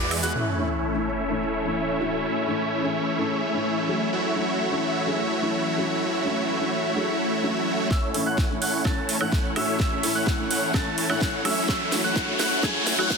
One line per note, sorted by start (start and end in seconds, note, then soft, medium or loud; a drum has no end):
0.00 0.21 E2 loud
0.00 0.31 E3 medium
0.00 0.20 G#3 loud
0.00 0.31 G#3 medium
0.00 0.31 B3 medium
0.00 0.20 E4 medium
0.00 0.20 F#4 medium
0.00 0.31 F#4 loud
0.00 0.20 B4 medium
0.00 0.20 D5 loud
0.00 0.20 D6 loud
0.11 open hi-hat loud
0.11 high woodblock medium
0.23 0.33 E2 loud
0.23 0.32 G#3 medium
0.23 0.32 E4 medium
0.23 0.32 F#4 medium
0.23 0.32 B4 medium
0.23 0.32 F#5 medium
0.23 0.32 F#6 medium
0.23 open hi-hat medium
0.23 shaker medium
0.35 7.87 E3 medium
0.35 4.10 A3 medium
0.35 7.87 A3 medium
0.35 4.09 C#4 medium
0.35 4.10 C#4 medium
0.35 4.10 E4 medium
0.35 2.22 A4 medium
0.35 4.10 C#5 medium
0.35 4.10 E5 medium
0.35 sub drop medium
0.35 shaker medium
0.47 shaker soft
0.58 0.91 A2 medium
0.58 0.91 E3 medium
0.58 0.91 A3 medium
0.58 0.91 C#4 medium
0.58 0.91 E4 medium
0.93 1.03 A2 medium
0.93 1.03 E3 medium
0.93 1.04 A3 medium
0.93 1.04 C#4 medium
0.93 1.04 E4 medium
1.29 1.39 A2 medium
1.29 1.39 E3 medium
1.29 1.39 A3 medium
1.29 1.39 C#4 medium
1.29 1.39 A4 medium
1.64 1.97 A2 medium
1.64 1.97 E3 medium
1.64 1.97 A3 medium
1.64 1.98 C#4 medium
1.64 1.98 E4 medium
2.00 2.44 A2 medium
2.00 2.45 E3 medium
2.00 2.45 A3 medium
2.00 2.45 C#4 medium
2.00 2.45 F#4 loud
2.24 4.11 G#4 medium
2.47 2.80 A2 medium
2.47 2.80 E3 medium
2.47 2.80 A3 medium
2.47 2.80 C#4 medium
2.47 2.80 E4 medium
2.82 2.92 A2 medium
2.82 2.92 E3 medium
2.82 2.93 A3 medium
2.82 2.93 C#4 medium
2.82 2.93 E4 medium
3.18 3.28 A2 medium
3.18 3.28 E3 medium
3.18 3.28 A3 medium
3.18 3.28 C#4 medium
3.18 3.28 A4 medium
3.53 3.86 A2 medium
3.53 3.86 E3 medium
3.53 3.86 A3 medium
3.53 3.87 C#4 medium
3.53 3.87 E4 medium
3.89 4.33 F#3 medium
3.89 4.33 A3 medium
3.89 4.34 C#4 medium
3.89 4.34 F#4 loud
4.13 7.88 A3 medium
4.13 7.87 C#4 medium
4.13 7.88 E4 medium
4.13 7.88 F#4 medium
4.13 6.00 F#4 medium
4.13 7.88 C#5 medium
4.13 7.88 E5 medium
4.36 4.69 F#3 medium
4.36 4.69 A3 medium
4.36 4.69 C#4 medium
4.36 4.69 E4 medium
4.71 4.81 F#3 medium
4.71 4.81 A3 medium
4.71 4.82 C#4 medium
4.71 4.82 E4 medium
5.07 5.17 F#3 medium
5.07 5.17 A3 medium
5.07 5.17 C#4 medium
5.07 5.17 G#4 medium
5.42 5.75 F#3 medium
5.42 5.75 A3 medium
5.42 5.75 C#4 medium
5.42 5.76 E4 medium
5.78 6.22 F#3 medium
5.78 6.22 A3 medium
5.78 6.23 C#4 medium
5.78 6.23 F#4 loud
5.90 shaker medium
6.02 7.89 E4 medium
6.25 6.58 F#3 medium
6.25 6.58 A3 medium
6.25 6.58 C#4 medium
6.25 6.58 E4 medium
6.60 6.70 F#3 medium
6.60 6.70 A3 medium
6.60 6.71 C#4 medium
6.60 6.71 E4 medium
6.85 shaker medium
6.96 7.06 F#3 medium
6.96 7.06 A3 medium
6.96 7.06 C#4 medium
6.96 7.06 G#4 medium
6.96 swell medium
7.32 shaker medium
7.43 7.89 F#3 medium
7.43 7.89 A3 medium
7.43 7.89 C#4 medium
7.43 7.90 F#4 medium
7.43 shaker soft
7.79 shaker medium
7.91 13.18 E3 medium
7.91 8.23 A3 loud
7.91 13.18 A3 medium
7.91 8.23 C#4 medium
7.91 11.65 C#4 medium
7.91 8.23 E4 medium
7.91 11.65 A4 medium
7.91 8.23 C#5 medium
7.91 8.23 E5 loud
7.91 8.23 E6 medium
7.91 kick loud
7.91 snare soft
7.91 riser medium
8.14 8.47 A2 medium
8.14 8.47 E3 medium
8.14 8.47 A3 medium
8.14 8.47 C#4 medium
8.14 8.47 E4 medium
8.14 open hi-hat medium
8.26 8.59 A3 medium
8.26 8.59 C#4 medium
8.26 8.59 E4 medium
8.26 8.59 C#5 medium
8.26 8.59 F#5 medium
8.26 8.59 F#6 medium
8.38 kick loud
8.38 snare soft
8.49 8.59 A2 medium
8.49 8.59 E3 medium
8.49 8.59 A3 medium
8.49 8.60 C#4 medium
8.49 8.60 E4 medium
8.62 8.82 A3 medium
8.62 8.82 C#4 medium
8.62 8.82 E4 medium
8.62 8.82 C#5 medium
8.62 8.82 F#5 medium
8.62 8.82 F#6 medium
8.62 open hi-hat loud
8.85 8.95 A2 medium
8.85 8.95 E3 medium
8.85 9.18 A3 medium
8.85 8.95 A3 medium
8.85 9.18 C#4 medium
8.85 8.95 C#4 medium
8.85 9.18 E4 medium
8.85 8.95 A4 medium
8.85 9.18 C#5 medium
8.85 9.18 A6 medium
8.85 kick loud
8.85 snare soft
8.85 high woodblock medium
9.09 open hi-hat loud
9.20 9.53 A2 medium
9.20 9.53 E3 medium
9.20 9.53 A3 medium
9.20 9.53 C#4 medium
9.20 9.53 E4 medium
9.20 9.54 E4 medium
9.20 9.53 C#5 medium
9.20 9.53 F#5 loud
9.20 9.53 F#6 medium
9.20 high woodblock medium
9.32 kick loud
9.32 snare medium
9.56 10.00 A2 medium
9.56 10.00 E3 medium
9.56 9.77 A3 loud
9.56 10.01 A3 medium
9.56 9.77 C#4 medium
9.56 10.01 C#4 medium
9.56 9.77 E4 medium
9.56 10.01 F#4 loud
9.56 9.77 C#5 medium
9.56 9.77 E5 loud
9.56 9.77 E6 loud
9.56 open hi-hat loud
9.56 high woodblock medium
9.80 10.12 E6 loud
9.80 kick loud
9.80 snare medium
10.03 10.36 A2 medium
10.03 10.36 E3 medium
10.03 10.36 A3 medium
10.03 10.36 C#4 medium
10.03 10.36 E4 medium
10.03 open hi-hat loud
10.15 10.48 A3 medium
10.15 10.48 C#4 medium
10.15 10.48 E4 medium
10.15 10.48 C#5 medium
10.15 10.48 F#5 medium
10.15 10.48 F#6 medium
10.27 kick loud
10.27 snare medium
10.38 10.48 A2 medium
10.38 10.48 E3 medium
10.38 10.48 A3 medium
10.38 10.49 C#4 medium
10.38 10.49 E4 medium
10.51 10.71 A3 medium
10.51 10.71 C#4 medium
10.51 10.71 E4 medium
10.51 10.71 C#5 medium
10.51 10.71 F#5 medium
10.51 10.71 F#6 medium
10.51 open hi-hat loud
10.74 10.84 A2 medium
10.74 10.84 E3 medium
10.74 11.07 A3 medium
10.74 10.84 A3 medium
10.74 11.07 C#4 medium
10.74 10.84 C#4 medium
10.74 11.07 E4 medium
10.74 10.84 A4 loud
10.74 11.07 A6 medium
10.74 kick loud
10.74 snare medium
10.74 high woodblock medium
10.98 open hi-hat loud
11.09 11.42 A2 medium
11.09 11.42 E3 medium
11.09 11.42 A3 medium
11.09 11.42 C#4 medium
11.09 11.42 E4 medium
11.09 11.43 E4 medium
11.09 11.42 C#5 medium
11.09 11.42 F#5 loud
11.09 11.42 F#6 medium
11.09 high woodblock medium
11.21 kick loud
11.21 snare medium
11.45 11.89 F#3 loud
11.45 11.89 A3 medium
11.45 11.66 A3 loud
11.45 11.66 C#4 medium
11.45 11.90 C#4 medium
11.45 11.66 E4 medium
11.45 11.90 F#4 loud
11.45 11.66 C#5 medium
11.45 11.66 E5 loud
11.45 11.66 E6 loud
11.45 open hi-hat loud
11.45 high woodblock medium
11.69 12.01 A3 loud
11.69 13.18 C#4 medium
11.69 12.01 F#4 medium
11.69 13.18 F#4 loud
11.69 12.01 C#5 medium
11.69 12.01 E6 loud
11.69 kick loud
11.69 snare medium
11.92 12.25 F#3 medium
11.92 12.25 A3 medium
11.92 12.25 C#4 medium
11.92 12.25 E4 medium
11.92 snare medium
11.92 open hi-hat loud
12.04 12.37 A3 medium
12.04 12.37 E4 medium
12.04 12.37 F#4 medium
12.04 12.37 C#5 medium
12.04 12.37 F#5 medium
12.04 12.37 F#6 medium
12.16 kick loud
12.16 snare medium
12.27 12.37 F#3 medium
12.27 12.37 A3 medium
12.27 12.38 C#4 medium
12.27 12.38 E4 medium
12.40 12.60 A3 medium
12.40 12.60 E4 medium
12.40 12.60 F#4 medium
12.40 12.60 C#5 medium
12.40 12.60 F#5 medium
12.40 12.60 F#6 medium
12.40 snare medium
12.40 open hi-hat loud
12.63 12.73 F#3 medium
12.63 12.73 A3 medium
12.63 12.73 C#4 medium
12.63 12.96 E4 medium
12.63 12.96 F#4 medium
12.63 12.73 G#4 loud
12.63 12.96 G#6 medium
12.63 kick loud
12.63 snare medium
12.63 high woodblock medium
12.87 snare medium
12.87 open hi-hat loud
12.98 13.18 F#3 medium
12.98 13.18 A3 medium
12.98 13.18 C#4 medium
12.98 13.18 E4 medium
12.98 13.18 F#4 medium
12.98 13.18 C#5 medium
12.98 13.18 F#5 loud
12.98 13.18 F#6 loud
12.98 high woodblock medium
13.10 kick loud
13.10 snare medium